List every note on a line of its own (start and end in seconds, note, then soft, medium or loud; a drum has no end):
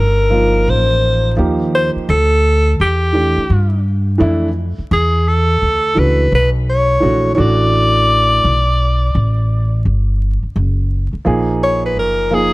0.00 0.64 G1 medium
0.00 0.71 A#4 loud
0.30 1.32 F3 medium
0.30 1.32 A#3 medium
0.30 1.33 D#4 medium
0.30 1.33 F4 medium
0.68 1.34 A1 medium
0.68 1.39 C5 loud
1.37 1.93 D#2 medium
1.37 2.08 F3 medium
1.37 2.08 A#3 medium
1.37 2.09 D#4 medium
1.37 2.09 G4 medium
1.75 1.90 C5 loud
1.96 muted upright bass stroke soft
2.09 2.76 D2 loud
2.09 2.76 A4 loud
2.80 3.34 E2 medium
2.80 3.82 G4 medium
3.13 3.41 E3 medium
3.13 3.41 A3 medium
3.13 3.42 D4 medium
3.13 3.42 G4 medium
3.37 muted upright bass stroke soft
3.50 4.17 G2 medium
4.18 4.75 F2 loud
4.18 4.47 E3 medium
4.18 4.47 A3 medium
4.18 4.47 D4 medium
4.18 4.48 E4 loud
4.78 muted upright bass stroke soft
4.91 5.58 E2 loud
4.91 5.29 G#4 medium
5.28 6.00 A4 medium
5.62 5.95 D2 medium
5.95 6.30 C#2 medium
5.95 6.23 E3 medium
5.95 6.24 A3 medium
5.95 6.24 D4 medium
5.95 6.24 F#4 medium
5.95 6.33 B4 loud
6.32 6.99 B1 medium
6.32 6.50 B4 medium
6.70 7.30 C#5 loud
7.00 7.36 A#1 medium
7.00 7.29 E3 medium
7.00 7.29 A3 medium
7.00 7.30 D4 medium
7.00 7.30 F#4 medium
7.34 8.40 A1 loud
7.34 8.51 E3 medium
7.34 8.52 A3 medium
7.34 8.52 D4 medium
7.34 8.53 F#4 medium
7.34 7.42 C#5 medium
7.40 9.86 D5 loud
8.44 9.11 B1 medium
9.15 9.82 A1 medium
9.85 10.40 G1 medium
10.43 muted upright bass stroke soft
10.56 11.10 F#1 medium
11.13 muted upright bass stroke soft
11.25 11.97 A#1 medium
11.25 12.26 F3 medium
11.25 12.26 A#3 medium
11.25 12.27 D#4 medium
11.25 12.27 G#4 medium
11.63 11.83 C#5 loud
11.85 11.97 B4 medium
11.97 12.53 F#1 medium
11.97 12.35 A#4 medium
12.31 12.53 F3 medium
12.31 12.53 A#3 medium
12.31 12.53 D#4 medium
12.31 12.53 G#4 medium
12.31 12.53 G#4 loud